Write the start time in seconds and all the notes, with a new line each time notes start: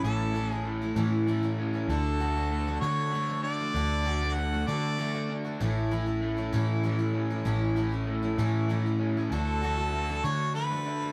Already playing: E3 A3 C#4 A4
0.03 A1 A2 E3 A3 C#4 E4 A4
0.34 E3 A3 C#4 E4 A4
0.50 A3 C#4 E4 G#4
0.65 A3
0.82 A3 C#4 E4
0.96 A2 E3 A3 C#4 E4
1.27 E3 A3 C#4 E4
1.43 A3 C#4 E4
1.59 C#4
1.73 A3 C#4 E4
1.88 D2 D3 A3 D4 F#4 A4
2.20 D3 A3 D4 F#4
2.36 A3 D4 F#4
2.52 A3
2.67 A3 D4 F#4
2.81 D3 A3 D4 F#4 C#5
3.13 D3 A3 D4 F#4
3.29 A3 D4 F#4
3.43 D4 D5
3.60 A3 D4 F#4
3.75 D2 D3 A3 D4 F#4
4.05 D3 A3 D4 F#4
4.22 A3 D4 F#4
4.35 A3 F#5
4.53 A3 D4 F#4
4.67 D3 A3 D4 F#4 D5
4.99 D3 A3 D4 F#4
5.14 A3 D4 F#4
5.29 D4
5.45 A3 D4 F#4
5.60 A1 A2 E3 A3 C#4 E4
5.91 E3 A3 C#4 E4
6.06 A3 C#4 E4
6.21 A3
6.37 A3 C#4 E4
6.53 A2 E3 A3 C#4 E4
6.83 E3 A3 C#4 E4
6.99 A3 C#4 E4
7.14 C#4
7.30 A3 C#4 E4
7.45 A1 A2 E3 A3 C#4 E4
7.76 E3 A3 C#4 E4
7.92 A3 C#4 E4
8.07 A3
8.23 A3 C#4 E4
8.38 A2 E3 A3 C#4 E4
8.69 E3 A3 C#4 E4
8.86 A3 C#4 E4
8.99 C#4
9.17 A3 C#4 E4
9.31 D2 D3 A3 D4 F#4 A4
9.63 D3 A3 D4 F#4
9.77 A3 D4 F#4
9.93 A3
10.09 A3 D4 F#4
10.24 D3 A3 D4 F#4 C#5
10.55 D3 A3 D4 F#4 B4
10.71 A3 D4 F#4
10.86 D4
11.02 A3 D4 F#4